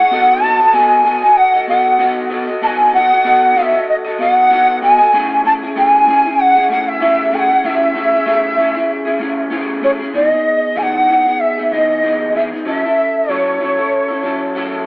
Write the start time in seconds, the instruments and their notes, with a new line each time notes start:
Already playing: clean electric guitar C#5, bansuri F#5
0.00 clean electric guitar E4 G#4
0.11 clean electric guitar B3 F#4 A4 D#5
0.42 clean electric guitar B3 F#4 A4 D#5, bansuri A5
0.59 clean electric guitar F#4 A4 D#5
0.73 clean electric guitar B3 F#4 A4 D#5, bansuri G#5
1.04 clean electric guitar B3 F#4 A4 D#5
1.22 clean electric guitar F#4 A4 D#5
1.37 bansuri F#5
1.54 clean electric guitar F#4 A4 D#5
1.67 clean electric guitar B3 F#4 A4 D#5, bansuri F#5
1.99 clean electric guitar B3 F#4 A4 D#5
2.30 clean electric guitar B3 F#4 A4 D#5
2.47 clean electric guitar F#4 A4 D#5
2.62 clean electric guitar B3 F#4 A4 D#5, bansuri A5
2.67 bansuri G#5
2.93 clean electric guitar B3 F#4 A4 D#5, bansuri F#5
3.10 clean electric guitar F#4 A4 D#5
3.24 clean electric guitar B3 F#4 A4 D#5
3.56 clean electric guitar B3 F#4 A4 D#5, bansuri F5
3.62 bansuri E5
3.72 clean electric guitar F#4 A4 D#5
3.89 bansuri D#5
4.05 clean electric guitar F#4 A4 D#5
4.18 clean electric guitar B3 F#4 A4 D#5, bansuri F#5
4.50 clean electric guitar B3 F#4 A4 D#5
4.82 clean electric guitar B3 F#4 A4 D#5, bansuri G#5
4.99 clean electric guitar F#4 A4 D#5
5.13 clean electric guitar A3 C#4 E4 G#4
5.44 clean electric guitar A3 C#4 E4 G#4, bansuri A5
5.61 clean electric guitar C#4 E4 G#4
5.76 clean electric guitar A3 C#4 E4 G#4, bansuri G#5
6.07 clean electric guitar A3 C#4 E4 G#4
6.24 clean electric guitar C#4 E4 G#4
6.40 bansuri F#5
6.55 clean electric guitar C#4 E4 G#4
6.69 clean electric guitar A3 C#4 E4 G#4, bansuri F#5
6.88 bansuri E5
7.00 clean electric guitar A3 C#4 E4 G#4
7.32 clean electric guitar A3 C#4 E4 G#4, bansuri G#5
7.39 bansuri F#5
7.49 clean electric guitar C#4 E4 G#4
7.64 clean electric guitar A3 C#4 E4 G#4, bansuri E5
7.94 clean electric guitar A3 C#4 E4 G#4
8.11 clean electric guitar C#4 E4 G#4
8.26 clean electric guitar A3 C#4 E4 G#4
8.57 clean electric guitar A3 C#4 E4 G#4
8.74 clean electric guitar C#4 E4 G#4
9.05 clean electric guitar C#4 E4 G#4
9.19 clean electric guitar A3 C#4 E4 G#4
9.50 clean electric guitar A3 C#4 E4 G#4
9.81 clean electric guitar A3 C#4 E4 G#4, bansuri C#5
9.99 clean electric guitar C#4 E4 G#4
10.13 clean electric guitar E3 B3 D#4 G#4, bansuri D5
10.28 clean electric guitar D#4 G#4, bansuri D#5
10.33 clean electric guitar B3
10.76 clean electric guitar E3 B3 D#4 G#4, bansuri G#5
10.83 bansuri F#5
11.07 clean electric guitar E3 B3 D#4 G#4
11.25 clean electric guitar B3 D#4 G#4
11.40 bansuri E5
11.57 clean electric guitar B3 D#4 G#4
11.71 clean electric guitar E3 B3 D#4 G#4, bansuri D#5
12.03 clean electric guitar E3 B3 D#4 G#4
12.34 clean electric guitar E3 B3 D#4 G#4, bansuri E5
12.52 clean electric guitar B3 D#4 G#4
12.65 clean electric guitar F#3 C#4 E4 A4, bansuri E5
12.83 clean electric guitar C#4 E4 A4
13.29 clean electric guitar F#3 C#4 E4 A4, bansuri C#5
13.60 clean electric guitar F#3 C#4 E4 A4
13.77 clean electric guitar C#4 E4 A4
14.08 clean electric guitar C#4 E4 A4
14.23 clean electric guitar F#3 C#4 E4 A4
14.55 clean electric guitar F#3 C#4 E4 A4